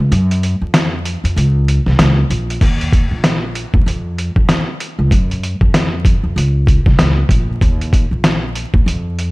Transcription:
0.11 0.53 F#2 loud
0.11 closed hi-hat medium
0.31 closed hi-hat medium
0.43 closed hi-hat medium
0.61 1.14 F2 loud
0.74 cross-stick loud
0.74 snare loud
0.74 closed hi-hat loud
1.05 closed hi-hat medium
1.24 1.34 F2 medium
1.24 closed hi-hat medium
1.36 1.78 C#2 loud
1.36 closed hi-hat loud
1.68 closed hi-hat medium
1.86 1.97 C2 medium
1.86 snare soft
1.99 2.25 C#2 medium
1.99 cross-stick medium
1.99 snare loud
1.99 closed hi-hat loud
2.30 2.56 A#1 medium
2.30 closed hi-hat medium
2.50 closed hi-hat medium
2.61 3.03 D#2 loud
2.61 kick loud
2.61 closed hi-hat loud
2.61 crash medium
2.81 closed hi-hat medium
2.93 kick loud
2.93 closed hi-hat medium
3.11 3.64 A#1 medium
3.24 cross-stick loud
3.24 snare loud
3.24 closed hi-hat medium
3.55 closed hi-hat medium
3.74 3.84 D#2 loud
3.74 kick medium
3.86 4.28 F2 loud
3.86 closed hi-hat medium
4.18 closed hi-hat medium
4.36 4.47 F2 medium
4.36 kick loud
4.49 cross-stick medium
4.49 snare loud
4.49 closed hi-hat medium
4.80 closed hi-hat medium
4.99 5.09 C#2 medium
5.11 5.53 F#2 loud
5.11 kick loud
5.11 closed hi-hat loud
5.31 closed hi-hat medium
5.43 closed hi-hat medium
5.61 6.14 F2 loud
5.61 kick medium
5.74 cross-stick medium
5.74 snare loud
5.74 closed hi-hat loud
6.05 kick loud
6.05 closed hi-hat medium
6.23 6.34 F2 medium
6.36 6.78 C#2 loud
6.36 closed hi-hat medium
6.67 kick medium
6.67 closed hi-hat medium
6.86 6.97 C2 medium
6.86 kick medium
6.86 snare soft
6.99 7.25 C#2 medium
6.99 cross-stick loud
6.99 snare loud
6.99 closed hi-hat medium
7.29 7.56 A#1 medium
7.29 kick medium
7.29 closed hi-hat medium
7.61 8.03 D#2 loud
7.61 kick loud
7.61 closed hi-hat medium
7.81 closed hi-hat medium
7.93 kick medium
7.93 closed hi-hat medium
8.11 8.64 A#1 medium
8.24 cross-stick medium
8.24 snare loud
8.24 closed hi-hat medium
8.56 closed hi-hat medium
8.74 8.84 D#2 loud
8.74 kick medium
8.86 9.28 F2 loud
8.86 closed hi-hat loud
9.19 closed hi-hat medium

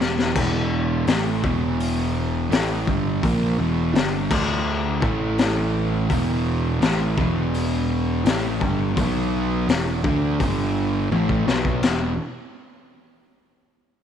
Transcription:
0.00 0.33 E1 medium
0.00 0.34 E2 medium
0.00 0.34 B2 medium
0.00 0.35 E3 medium
0.00 snare medium
0.19 snare medium
0.35 1.03 E1 medium
0.35 1.06 E2 medium
0.35 1.06 B2 loud
0.35 1.06 E3 loud
0.35 kick loud
0.35 crash loud
1.07 1.41 A1 medium
1.07 1.42 A2 medium
1.07 1.42 E3 medium
1.07 1.43 A3 loud
1.07 snare loud
1.07 open hi-hat medium
1.43 2.47 E1 medium
1.43 2.50 E2 medium
1.43 2.50 B2 medium
1.43 2.50 E3 loud
1.43 kick loud
1.80 open hi-hat medium
2.50 2.85 A1 medium
2.50 2.86 A2 medium
2.50 2.86 E3 loud
2.50 2.86 A3 medium
2.50 snare loud
2.50 open hi-hat medium
2.87 3.21 G1 medium
2.87 3.22 G2 medium
2.87 3.22 D3 medium
2.87 3.22 G3 loud
2.87 kick loud
3.23 3.57 A#1 medium
3.23 3.58 A#2 medium
3.23 3.58 F3 loud
3.23 3.59 A#3 loud
3.23 kick loud
3.23 open hi-hat medium
3.59 3.92 E1 medium
3.59 3.94 E2 medium
3.59 3.94 B2 medium
3.59 3.94 E3 loud
3.94 4.28 G1 loud
3.94 4.29 G2 medium
3.94 4.29 D3 medium
3.94 4.30 G3 loud
3.94 snare loud
3.94 open hi-hat medium
4.30 4.98 D2 loud
4.30 5.01 D3 loud
4.30 5.02 A3 loud
4.30 5.02 D4 loud
4.30 kick loud
4.30 crash loud
5.02 6.06 A1 loud
5.02 6.09 A2 medium
5.02 6.09 E3 loud
5.02 6.10 A3 loud
5.02 kick loud
5.38 snare loud
5.38 open hi-hat medium
6.09 6.78 E1 medium
6.09 6.80 E2 medium
6.09 6.80 B2 medium
6.09 6.80 E3 loud
6.09 kick loud
6.09 open hi-hat medium
6.81 7.15 A1 medium
6.81 7.16 A2 loud
6.81 7.16 E3 loud
6.81 7.17 A3 loud
6.81 snare loud
6.81 open hi-hat medium
7.16 8.21 E1 medium
7.16 8.23 E2 loud
7.16 8.24 B2 medium
7.16 8.24 E3 loud
7.16 kick loud
7.54 open hi-hat medium
8.25 8.58 A1 medium
8.25 8.60 A2 medium
8.25 8.60 E3 loud
8.25 8.60 A3 medium
8.25 snare loud
8.25 open hi-hat medium
8.60 8.94 G1 medium
8.60 8.95 G2 medium
8.60 8.96 D3 medium
8.60 8.97 G3 loud
8.60 kick loud
8.96 9.64 B1 medium
8.96 9.67 B2 medium
8.96 9.67 F#3 loud
8.96 9.68 B3 loud
8.96 kick loud
8.96 open hi-hat medium
9.68 10.02 E1 loud
9.68 10.03 E2 medium
9.68 10.03 B2 medium
9.68 10.03 E3 medium
9.68 snare loud
9.68 open hi-hat medium
10.04 10.37 D2 medium
10.04 10.38 D3 medium
10.04 10.41 A3 loud
10.04 10.39 D4 loud
10.04 kick loud
10.40 11.07 G1 medium
10.40 11.10 G2 medium
10.40 11.11 D3 loud
10.40 11.11 G3 loud
10.40 kick loud
10.40 open hi-hat medium
11.11 11.45 A1 medium
11.11 11.46 A2 medium
11.11 11.46 E3 medium
11.11 11.47 A3 medium
11.11 high tom medium
11.29 kick medium
11.47 11.81 B1 loud
11.47 11.81 B2 medium
11.47 11.82 F#3 medium
11.47 11.82 B3 medium
11.47 snare medium
11.65 kick medium
11.82 12.16 E1 medium
11.82 12.11 E2 medium
11.82 12.11 B2 loud
11.82 12.12 E3 medium
11.82 snare loud
11.82 splash medium

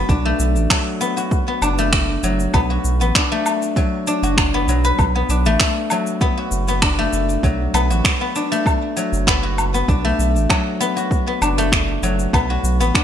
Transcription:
0.00 0.14 F#3 medium
0.00 0.25 A3 loud
0.00 1.00 B3 medium
0.00 1.17 F#4 medium
0.09 0.33 B1 loud
0.09 1.62 D4 medium
0.09 kick loud
0.09 shaker soft
0.25 1.78 A3 medium
0.39 0.57 B1 medium
0.39 shaker medium
0.56 0.67 A1 medium
0.56 shaker soft
0.70 2.22 F#3 medium
0.70 finger snap loud
0.70 kick loud
0.70 low woodblock medium
0.70 shaker soft
1.01 1.47 B3 medium
1.01 shaker medium
1.17 2.70 F#4 medium
1.17 shaker soft
1.31 kick loud
1.31 shaker soft
1.48 2.53 B3 medium
1.62 2.18 F#1 medium
1.62 3.15 D4 medium
1.62 low woodblock medium
1.62 shaker medium
1.78 3.31 A3 medium
1.78 shaker soft
1.93 finger snap loud
1.93 kick loud
1.93 shaker soft
2.23 2.47 F#1 medium
2.23 3.75 F#3 medium
2.23 shaker medium
2.40 shaker soft
2.54 2.78 B1 loud
2.54 3.01 B3 loud
2.54 kick loud
2.54 low woodblock medium
2.54 shaker soft
2.70 4.23 F#4 medium
2.84 3.02 B1 medium
2.84 shaker medium
3.00 3.12 A1 medium
3.00 4.54 B3 medium
3.00 shaker soft
3.15 4.07 D4 medium
3.15 finger snap loud
3.15 kick loud
3.15 shaker soft
3.32 5.46 A3 loud
3.46 low woodblock medium
3.46 shaker medium
3.62 shaker soft
3.76 4.68 F#3 medium
3.76 kick loud
3.76 shaker soft
4.07 5.29 D4 medium
4.07 shaker medium
4.23 4.67 F#1 medium
4.23 6.37 F#4 medium
4.23 shaker soft
4.37 finger snap medium
4.37 kick loud
4.37 low woodblock medium
4.37 shaker soft
4.54 5.15 B3 loud
4.68 4.92 B1 medium
4.68 5.04 F#3 medium
4.68 shaker medium
4.84 6.89 B4 loud
4.84 shaker soft
4.99 5.23 B1 loud
4.99 kick loud
4.99 low woodblock medium
4.99 shaker soft
5.15 6.21 B3 medium
5.29 5.47 B1 medium
5.29 6.82 D4 medium
5.29 shaker medium
5.45 5.57 A1 loud
5.45 6.98 A3 loud
5.45 shaker soft
5.60 finger snap loud
5.60 kick loud
5.60 shaker soft
5.90 7.43 F#3 medium
5.90 low woodblock medium
5.90 shaker medium
6.07 shaker soft
6.21 6.68 B3 loud
6.21 kick loud
6.21 shaker soft
6.38 7.90 F#4 medium
6.51 7.08 F#1 medium
6.51 shaker medium
6.68 7.74 B3 medium
6.68 shaker soft
6.82 8.35 D4 medium
6.82 finger snap medium
6.82 kick loud
6.82 low woodblock medium
6.82 shaker soft
6.99 8.51 A3 loud
7.13 7.37 F#1 medium
7.13 shaker medium
7.29 shaker soft
7.43 7.68 B1 medium
7.43 8.95 F#3 medium
7.43 kick loud
7.43 shaker soft
7.74 7.92 B1 medium
7.74 8.21 B3 loud
7.74 low woodblock medium
7.74 shaker medium
7.90 8.01 A1 medium
7.90 9.43 F#4 medium
7.90 shaker soft
8.05 finger snap loud
8.05 kick loud
8.05 shaker soft
8.21 9.27 B3 medium
8.36 9.88 D4 medium
8.36 shaker medium
8.52 10.04 A3 loud
8.52 shaker soft
8.66 kick loud
8.66 low woodblock medium
8.66 shaker soft
8.97 9.94 F#3 medium
8.97 shaker medium
9.13 9.83 F#1 medium
9.13 shaker soft
9.27 9.74 B3 loud
9.27 finger snap medium
9.27 kick loud
9.27 shaker soft
9.43 10.96 F#4 medium
9.58 low woodblock medium
9.58 shaker medium
9.74 10.80 B3 medium
9.74 shaker soft
9.88 10.13 B1 loud
9.88 11.41 D4 medium
9.88 kick loud
9.88 shaker soft
10.05 11.58 A3 loud
10.19 10.37 B1 medium
10.19 shaker medium
10.35 10.47 A1 medium
10.35 shaker soft
10.49 12.02 F#3 medium
10.49 finger snap loud
10.49 kick loud
10.49 low woodblock medium
10.49 shaker soft
10.80 11.27 B3 loud
10.80 shaker medium
10.97 12.50 F#4 medium
10.97 shaker soft
11.11 kick medium
11.11 shaker soft
11.27 12.33 B3 medium
11.42 11.98 F#1 medium
11.42 12.94 D4 medium
11.42 low woodblock medium
11.42 shaker medium
11.58 13.04 A3 loud
11.58 shaker soft
11.72 finger snap loud
11.72 kick loud
11.72 shaker soft
12.03 12.27 F#1 medium
12.03 13.04 F#3 medium
12.03 shaker medium
12.19 shaker soft
12.33 12.58 B1 medium
12.33 12.80 B3 loud
12.33 kick loud
12.33 low woodblock medium
12.33 shaker soft
12.50 13.04 F#4 medium
12.64 12.81 B1 medium
12.64 shaker medium
12.80 12.91 A1 loud
12.80 13.04 B3 medium
12.80 shaker soft
12.95 13.04 D4 medium
12.95 finger snap loud
12.95 kick loud
12.95 shaker soft

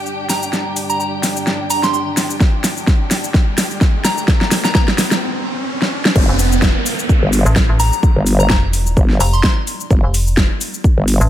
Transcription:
0.00 5.18 G3 medium
0.00 5.18 D4 medium
0.00 5.22 D4 medium
0.00 5.22 G4 medium
0.00 5.18 D5 medium
0.00 5.18 G5 medium
0.00 5.22 G5 medium
0.00 riser medium
0.06 shaker soft
0.30 0.46 A#5 medium
0.30 snare medium
0.30 open hi-hat medium
0.30 shaker medium
0.43 shaker soft
0.53 snare medium
0.53 shaker soft
0.76 open hi-hat loud
0.76 shaker medium
0.90 0.96 A#5 medium
0.90 shaker soft
1.00 1.08 A#5 medium
1.00 shaker soft
1.23 snare medium
1.23 open hi-hat medium
1.23 shaker medium
1.37 shaker soft
1.47 snare medium
1.47 shaker soft
1.70 1.81 A#5 medium
1.70 open hi-hat loud
1.70 shaker medium
1.83 1.90 C6 medium
1.83 snare medium
1.83 shaker soft
1.94 2.02 C6 medium
1.94 shaker soft
2.17 snare medium
2.17 open hi-hat medium
2.17 shaker medium
2.30 shaker soft
2.40 kick loud
2.40 snare medium
2.40 shaker soft
2.64 snare medium
2.64 open hi-hat loud
2.64 shaker medium
2.77 shaker soft
2.87 kick loud
2.87 snare medium
2.87 shaker soft
3.11 snare medium
3.11 open hi-hat medium
3.11 shaker medium
3.24 shaker soft
3.34 kick loud
3.34 snare medium
3.34 shaker soft
3.58 snare medium
3.58 open hi-hat loud
3.58 shaker medium
3.71 shaker soft
3.81 kick loud
3.81 snare medium
3.81 shaker soft
4.05 4.21 A#5 medium
4.05 snare medium
4.05 open hi-hat medium
4.05 shaker medium
4.18 shaker soft
4.28 kick loud
4.28 snare medium
4.28 shaker soft
4.41 snare medium
4.51 snare medium
4.51 open hi-hat loud
4.51 shaker medium
4.64 4.71 A#5 medium
4.64 snare medium
4.64 shaker soft
4.75 4.83 A#5 medium
4.75 kick loud
4.75 snare loud
4.75 shaker soft
4.88 snare medium
4.98 snare medium
4.98 open hi-hat loud
4.98 shaker medium
5.11 snare medium
5.11 shaker soft
5.82 snare medium
6.05 snare loud
6.16 6.27 G1 loud
6.16 11.29 D4 medium
6.16 11.29 G4 medium
6.16 11.29 D5 medium
6.16 kick loud
6.16 crash loud
6.16 downlifter medium
6.16 shaker soft
6.29 6.74 F1 loud
6.39 open hi-hat loud
6.39 shaker medium
6.52 shaker soft
6.62 kick loud
6.62 snare loud
6.62 shaker soft
6.86 open hi-hat loud
6.86 shaker medium
6.99 shaker soft
7.09 kick loud
7.09 shaker soft
7.23 7.44 G1 medium
7.33 open hi-hat loud
7.33 shaker medium
7.46 7.67 A1 medium
7.46 shaker soft
7.56 kick loud
7.56 snare loud
7.56 shaker soft
7.69 7.91 A1 loud
7.80 7.96 A#5 medium
7.80 open hi-hat medium
7.80 shaker medium
7.93 shaker soft
8.03 kick loud
8.03 shaker soft
8.16 8.48 G1 loud
8.26 open hi-hat loud
8.26 shaker medium
8.40 8.46 A#5 medium
8.40 shaker soft
8.50 8.95 F1 loud
8.50 8.58 A#5 medium
8.50 kick loud
8.50 snare loud
8.50 shaker soft
8.73 open hi-hat loud
8.73 shaker medium
8.87 shaker soft
8.97 9.19 G1 medium
8.97 kick loud
8.97 shaker soft
9.10 snare soft
9.20 9.42 F1 loud
9.20 9.31 A#5 medium
9.20 open hi-hat loud
9.20 shaker medium
9.33 9.40 C6 medium
9.33 shaker soft
9.43 9.52 C6 medium
9.43 kick loud
9.43 snare loud
9.43 shaker soft
9.67 open hi-hat medium
9.67 shaker medium
9.80 shaker soft
9.91 10.02 G1 medium
9.91 kick loud
9.91 shaker soft
10.04 10.48 F1 loud
10.14 open hi-hat loud
10.14 shaker medium
10.27 shaker soft
10.37 kick loud
10.37 snare loud
10.37 shaker soft
10.61 open hi-hat loud
10.61 shaker medium
10.74 shaker soft
10.84 kick loud
10.84 shaker soft
10.98 11.19 G1 loud
11.08 open hi-hat loud
11.08 shaker medium
11.21 11.29 A1 loud
11.21 shaker soft

